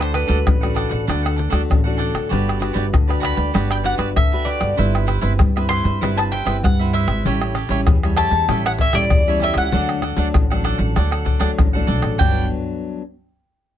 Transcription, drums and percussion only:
0.01 pandeiro, tamborim, maracas
0.14 pandeiro, tamborim, maracas
0.29 pandeiro, maracas
0.47 pandeiro, tamborim, maracas, surdo
0.63 pandeiro, tamborim, maracas
0.76 pandeiro, tamborim, maracas
0.91 pandeiro, maracas
1.10 pandeiro, tamborim, maracas, surdo
1.26 pandeiro, tamborim, maracas
1.39 pandeiro
1.52 pandeiro, tamborim, maracas
1.71 pandeiro, tamborim, maracas, surdo
1.87 pandeiro, maracas
2.00 pandeiro, maracas
2.15 pandeiro, tamborim, maracas
2.33 pandeiro, maracas, surdo
2.49 pandeiro, tamborim, maracas
2.62 pandeiro, tamborim
2.76 pandeiro, maracas
2.94 pandeiro, tamborim, maracas, surdo
3.10 pandeiro, tamborim, maracas
3.23 pandeiro, tamborim, maracas
3.37 pandeiro, maracas
3.55 pandeiro, tamborim, maracas, surdo
3.71 pandeiro, tamborim, maracas
3.84 pandeiro
3.99 pandeiro, tamborim, maracas
4.16 pandeiro, tamborim, maracas, surdo
4.33 pandeiro, maracas
4.46 pandeiro, maracas
4.61 pandeiro, tamborim, maracas
4.78 pandeiro, maracas, surdo
4.95 pandeiro, tamborim, maracas
5.08 pandeiro, tamborim, maracas
5.22 pandeiro, maracas
5.39 pandeiro, tamborim, maracas, surdo
5.57 pandeiro, tamborim, maracas
5.70 pandeiro, tamborim, maracas
5.85 pandeiro, maracas
6.03 pandeiro, tamborim, maracas, surdo
6.19 pandeiro, tamborim, maracas
6.33 pandeiro
6.47 pandeiro, tamborim, maracas
6.65 pandeiro, tamborim, maracas, surdo
6.81 pandeiro, maracas
6.93 pandeiro
7.08 pandeiro, tamborim, maracas
7.26 pandeiro, maracas, surdo
7.41 pandeiro, tamborim, maracas
7.55 pandeiro, tamborim, maracas
7.69 pandeiro, maracas
7.87 pandeiro, tamborim, maracas, surdo
8.03 pandeiro, tamborim, maracas
8.17 pandeiro, tamborim
8.31 pandeiro, maracas
8.49 pandeiro, tamborim, maracas, surdo
8.66 pandeiro, tamborim, maracas
8.78 pandeiro, maracas, surdo
8.93 pandeiro, tamborim, maracas
9.10 pandeiro, tamborim, maracas, surdo
9.27 pandeiro, maracas
9.40 pandeiro, maracas
9.54 pandeiro, tamborim, maracas
9.72 pandeiro, maracas, surdo
9.89 pandeiro, tamborim, maracas
10.02 pandeiro, tamborim
10.17 pandeiro, maracas
10.34 pandeiro, tamborim, maracas, surdo
10.52 pandeiro, tamborim, maracas
10.65 pandeiro, tamborim, maracas
10.79 pandeiro, maracas
10.96 pandeiro, tamborim, maracas, surdo
11.12 pandeiro, tamborim, maracas
11.26 pandeiro, surdo
11.41 pandeiro, tamborim, maracas
11.58 pandeiro, tamborim, maracas, surdo
11.75 pandeiro, maracas
11.88 pandeiro, maracas
12.02 pandeiro, tamborim, maracas
12.20 surdo

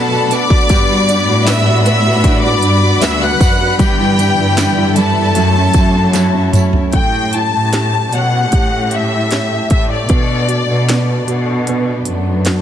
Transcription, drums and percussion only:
0.31 closed hi-hat, tambourine
0.50 kick
0.69 kick, closed hi-hat, tambourine
1.09 closed hi-hat, tambourine
1.47 snare, closed hi-hat, tambourine
1.85 closed hi-hat, tambourine
2.24 kick, closed hi-hat, tambourine
2.62 closed hi-hat
3.02 snare, closed hi-hat, tambourine
3.41 kick, closed hi-hat, tambourine
3.79 kick, closed hi-hat, tambourine
4.19 closed hi-hat, tambourine
4.57 snare, closed hi-hat, tambourine
4.96 closed hi-hat, tambourine
5.35 closed hi-hat, tambourine
5.74 kick, closed hi-hat, tambourine
6.13 snare, closed hi-hat, tambourine
6.53 closed hi-hat, mid tom, tambourine
6.73 floor tom
6.93 kick, closed hi-hat
7.33 closed hi-hat
7.73 snare, closed hi-hat
8.13 closed hi-hat
8.52 kick, closed hi-hat
8.91 closed hi-hat
9.31 snare, closed hi-hat
9.70 kick, closed hi-hat
10.09 kick, closed hi-hat
10.49 closed hi-hat
10.89 snare, closed hi-hat
11.28 closed hi-hat
11.67 closed hi-hat
12.05 closed hi-hat
12.45 snare, closed hi-hat

